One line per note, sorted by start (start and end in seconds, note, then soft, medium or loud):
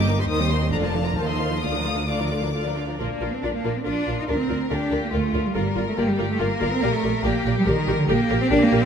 0.00 0.27 G1 medium
0.00 0.27 G2 medium
0.00 0.18 D6 medium
0.08 0.17 A#3 soft
0.08 0.19 D#4 soft
0.08 0.19 A#4 soft
0.18 0.30 G3 soft
0.18 0.30 A#3 soft
0.18 0.29 G4 soft
0.18 0.30 D#5 soft
0.18 0.24 C6 medium
0.28 0.71 D#2 medium
0.28 0.72 D#2 medium
0.28 0.39 D#3 medium
0.28 0.39 D#4 soft
0.28 0.39 C5 soft
0.28 0.50 D#6 medium
0.39 0.51 G3 soft
0.39 0.51 C4 soft
0.39 0.50 G4 soft
0.39 0.50 D#5 soft
0.49 0.61 D#3 soft
0.49 0.61 D#4 soft
0.49 0.61 C5 soft
0.49 0.72 C6 medium
0.60 0.72 G3 soft
0.60 0.72 C4 soft
0.60 0.72 G4 soft
0.60 0.72 D#5 soft
0.71 1.16 F1 medium
0.71 1.16 F2 soft
0.71 0.82 D3 soft
0.71 0.82 D4 soft
0.71 0.82 D5 soft
0.71 0.82 F5 soft
0.71 0.76 A#5 medium
0.83 0.94 F3 soft
0.83 0.94 F4 soft
0.83 0.94 A#4 soft
0.83 0.92 D5 soft
0.83 1.05 A5 medium
0.94 1.05 D3 soft
0.94 1.05 D4 soft
0.94 1.03 D5 soft
0.94 1.05 F5 soft
1.04 1.16 F3 soft
1.04 1.15 F4 soft
1.04 1.16 A#4 soft
1.04 1.16 D5 soft
1.04 1.16 A#5 medium
1.15 1.62 D#2 soft
1.15 1.62 D#2 medium
1.15 1.26 D#3 soft
1.15 1.26 F4 soft
1.15 1.26 C5 soft
1.15 1.26 F5 soft
1.15 1.27 A5 medium
1.26 1.38 F3 soft
1.26 1.38 D#4 soft
1.26 1.39 A4 soft
1.26 1.39 D#5 soft
1.26 1.61 C6 medium
1.38 1.50 D#3 soft
1.38 1.50 F4 soft
1.38 1.50 C5 soft
1.38 1.50 F5 soft
1.50 1.62 F3 soft
1.50 1.62 D#4 soft
1.50 1.62 A4 soft
1.50 1.62 D#5 soft
1.61 2.79 D2 soft
1.61 1.72 D3 soft
1.61 1.72 F4 soft
1.61 1.73 D5 soft
1.61 1.73 F5 soft
1.61 2.08 D#6 medium
1.73 1.85 F3 soft
1.73 1.85 D4 soft
1.73 1.85 A#4 soft
1.73 1.84 D5 soft
1.84 1.96 D3 soft
1.84 1.96 F4 soft
1.84 1.96 D5 soft
1.84 1.97 F5 soft
1.96 2.08 F3 soft
1.96 2.08 D4 soft
1.96 2.08 A#4 soft
1.96 2.07 D5 soft
2.07 2.19 D3 soft
2.07 2.19 F4 soft
2.07 2.18 D5 soft
2.07 2.19 F5 soft
2.07 2.77 D6 medium
2.19 2.31 F3 soft
2.19 2.31 D4 soft
2.19 2.31 A#4 soft
2.19 2.30 D5 soft
2.30 2.42 D3 soft
2.30 2.42 F4 soft
2.30 2.41 D5 soft
2.30 2.43 F5 soft
2.42 2.54 F3 soft
2.42 2.54 D4 soft
2.42 2.54 A#4 soft
2.42 2.52 D5 soft
2.53 2.65 D3 soft
2.53 2.65 F4 soft
2.53 2.64 D5 soft
2.53 2.64 F5 soft
2.65 2.78 F3 soft
2.65 2.78 D4 soft
2.65 2.77 A#4 soft
2.65 2.76 D5 soft
2.77 2.88 D3 soft
2.77 2.88 F4 soft
2.77 2.87 D5 soft
2.77 2.88 F5 soft
2.88 2.99 F3 soft
2.88 2.99 D4 soft
2.88 3.00 A#4 soft
2.88 2.99 D5 soft
2.99 3.08 A#1 soft
2.99 3.30 A#3 medium
2.99 3.82 D4 soft
2.99 3.07 F4 soft
2.99 3.07 A#4 soft
2.99 3.07 D5 soft
3.20 3.29 A#1 soft
3.20 3.28 F4 soft
3.20 3.28 A#4 soft
3.20 3.29 D5 soft
3.33 3.44 C4 medium
3.43 3.51 A#1 medium
3.43 3.47 D4 medium
3.43 3.51 F4 soft
3.43 3.51 A#4 soft
3.43 3.51 D5 soft
3.54 3.75 A#3 medium
3.64 3.73 A#1 soft
3.64 3.72 F4 soft
3.64 3.72 A#4 soft
3.64 3.73 D5 soft
3.76 3.86 C4 medium
3.85 3.94 A#1 soft
3.85 4.17 D4 medium
3.85 3.93 F4 soft
3.85 4.29 F4 medium
3.85 3.93 A#4 soft
3.85 3.94 D5 soft
4.07 4.15 A#1 soft
4.07 4.15 F4 soft
4.07 4.15 A#4 soft
4.07 4.16 D5 soft
4.19 4.23 D#4 medium
4.28 4.36 D2 medium
4.28 4.39 D4 medium
4.28 4.36 F4 soft
4.28 4.36 A#4 soft
4.28 4.70 A#4 soft
4.28 4.37 D5 soft
4.39 4.70 C4 medium
4.49 4.57 D2 soft
4.49 4.57 F4 soft
4.49 4.57 A#4 soft
4.49 4.58 D5 soft
4.70 4.79 D2 medium
4.70 5.02 D4 medium
4.70 4.78 F4 soft
4.70 5.13 G4 medium
4.70 4.78 A#4 soft
4.70 4.79 D5 soft
4.91 4.99 D2 soft
4.91 4.99 F4 soft
4.91 4.99 A#4 soft
4.91 5.00 D5 soft
5.03 5.13 A#3 medium
5.12 5.21 D2 medium
5.12 5.44 A3 medium
5.12 5.20 F4 soft
5.12 5.56 F4 medium
5.12 5.20 A#4 soft
5.12 5.20 D5 soft
5.33 5.42 D2 soft
5.33 5.42 F4 soft
5.33 5.41 A#4 soft
5.33 5.42 D5 soft
5.46 5.54 G3 medium
5.55 5.64 G1 medium
5.55 5.87 G3 medium
5.55 5.63 F4 medium
5.55 5.63 A#4 medium
5.55 5.97 A#4 medium
5.55 5.63 D5 soft
5.76 5.85 G1 soft
5.76 5.84 F4 soft
5.76 5.84 A#4 soft
5.76 5.84 D5 soft
5.88 5.92 A3 medium
5.97 6.06 G1 medium
5.97 6.08 A#3 medium
5.97 6.05 F4 soft
5.97 6.40 G4 medium
5.97 6.05 A#4 medium
5.97 6.06 D5 soft
6.09 6.30 G3 medium
6.18 6.27 G1 medium
6.18 6.26 F4 soft
6.18 6.26 A#4 soft
6.18 6.26 D5 soft
6.30 6.41 A3 medium
6.39 6.49 G1 medium
6.39 6.72 A#3 medium
6.39 6.47 F4 medium
6.39 6.48 A#4 soft
6.39 7.24 A#4 medium
6.39 6.47 D5 soft
6.61 6.70 G1 medium
6.61 6.69 F4 medium
6.61 6.69 A#4 medium
6.61 6.69 D5 medium
6.72 6.83 C4 medium
6.82 6.91 A#1 medium
6.82 6.93 A#3 medium
6.82 6.90 G4 medium
6.82 6.90 A#4 medium
6.82 6.90 D5 medium
6.92 7.24 A3 medium
7.03 7.11 A#1 medium
7.03 7.11 G4 soft
7.03 7.11 A#4 medium
7.03 7.11 D5 soft
7.24 7.32 A#1 medium
7.24 7.56 A#3 medium
7.24 7.66 G4 medium
7.24 7.32 G4 medium
7.24 7.32 A#4 medium
7.24 7.32 D5 medium
7.45 7.53 A#1 medium
7.45 7.53 G4 medium
7.45 7.53 A#4 medium
7.45 7.54 D5 medium
7.58 7.61 G3 medium
7.66 7.74 A#1 medium
7.66 7.98 D#3 medium
7.66 7.74 G4 medium
7.66 7.74 A#4 medium
7.66 8.09 A#4 medium
7.66 7.75 D5 medium
7.87 7.96 A#1 medium
7.87 7.95 G4 medium
7.87 7.95 A#4 medium
7.87 7.96 D5 medium
7.99 8.09 D3 medium
8.08 8.17 A#1 medium
8.08 8.40 A#3 medium
8.08 8.85 G4 medium
8.08 8.16 G4 medium
8.08 8.16 A#4 medium
8.08 8.17 D5 medium
8.29 8.38 A#1 medium
8.29 8.38 G4 medium
8.29 8.38 A#4 medium
8.29 8.37 D5 medium
8.41 8.45 C4 loud
8.50 8.59 A#1 medium
8.50 8.61 D4 medium
8.50 8.58 G4 medium
8.50 8.59 A#4 medium
8.50 8.59 D5 medium
8.62 8.83 A#3 loud
8.72 8.80 A#1 medium
8.72 8.80 G4 medium
8.72 8.80 A#4 medium
8.72 8.80 D5 medium